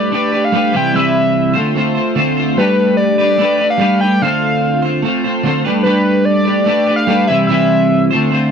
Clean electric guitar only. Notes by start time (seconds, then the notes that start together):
Already playing: G3 A3 D4 G4 B4
0.12 A3 D4 G4 B4
0.32 D4 G4 B4
0.52 G3 A3 D4 G4 B4
0.72 C3 E3 G3 C4 E4 B4
0.93 C3 E3 G3 C4 E4 B4
1.54 D3 A3 C4 F4 C5
1.75 A3 C4 F4 C5
1.95 C4 F4 C5
2.15 D3 A3 C4 F4 C5
2.37 C4 F4 C5
2.57 G3 A3 D4 G4 B4
3.18 D4 G4 B4
3.38 A3 D4 G4 B4
3.58 D4 G4 B4
3.78 G3 A3 D4 G4 B4
4.00 G4 B4
4.04 D4
4.22 D3 A3 C4 F4 C5
4.82 C4 F4 C5
5.02 A3 C4 F4 C5
5.24 C4 F4 C5
5.43 D3 A3 C4 F4
5.48 C5
5.65 G3 A3 D4 G4 B4
5.84 G3 A3 D4 G4 B4
6.45 D4 G4 B4
6.66 A3 D4 G4 B4
6.87 D4 G4 B4
7.07 G3 A3 D4 G4 B4
7.28 C3 E3 G3 C4 E4 B4
7.49 C3 E3 G3 C4 E4 B4
8.11 D3 A3 C4 F4 C5
8.31 A3 C4 F4
8.35 C5